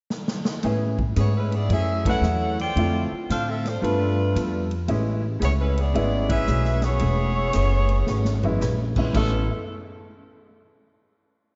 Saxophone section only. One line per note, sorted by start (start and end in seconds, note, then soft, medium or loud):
1.18 1.34 B3 medium
1.18 1.34 E4 medium
1.18 1.34 G#4 medium
1.18 1.35 C#5 medium
1.37 1.53 G#3 medium
1.37 1.52 C#4 medium
1.37 1.52 E4 medium
1.37 1.53 B4 medium
1.55 1.71 B3 medium
1.55 1.71 E4 medium
1.55 1.71 G#4 medium
1.55 1.71 D5 medium
1.73 2.04 C#4 medium
1.73 2.05 G#4 medium
1.73 2.04 A4 medium
1.73 2.04 E5 medium
2.08 2.57 E4 medium
2.08 2.56 A4 medium
2.08 2.56 C#5 medium
2.08 2.57 F#5 medium
2.61 3.10 F4 medium
2.61 3.10 C5 medium
2.61 3.10 D5 medium
2.61 3.10 G5 medium
3.31 3.47 D4 medium
3.31 3.47 A4 medium
3.31 3.47 C5 medium
3.31 3.47 F5 loud
3.49 3.66 C4 medium
3.49 3.66 F4 medium
3.49 3.66 A4 medium
3.49 3.66 E5 medium
3.66 3.81 A3 medium
3.66 3.82 D4 medium
3.66 3.81 F4 medium
3.66 3.84 C5 medium
3.82 4.67 A3 medium
3.82 4.68 D4 medium
3.82 4.67 F4 medium
3.82 4.67 B4 medium
5.42 5.50 B3 medium
5.42 5.51 E4 medium
5.42 5.50 G#4 medium
5.42 5.51 C#5 medium
5.60 5.78 G#3 medium
5.60 5.78 C#4 medium
5.60 5.78 E4 medium
5.60 5.78 B4 medium
5.79 6.32 B3 medium
5.79 6.32 E4 medium
5.79 6.29 G#4 medium
5.79 5.84 C#5 medium
5.79 6.32 D5 medium
6.30 6.80 C#4 medium
6.30 6.80 G#4 medium
6.30 6.80 B4 medium
6.30 6.81 E5 loud
6.83 8.61 B3 medium
6.83 8.62 E4 medium
6.83 8.61 G#4 medium
6.83 8.62 C#5 medium
9.15 9.48 E3 medium
9.15 9.48 B3 medium
9.15 9.48 C#4 medium
9.15 9.48 A4 medium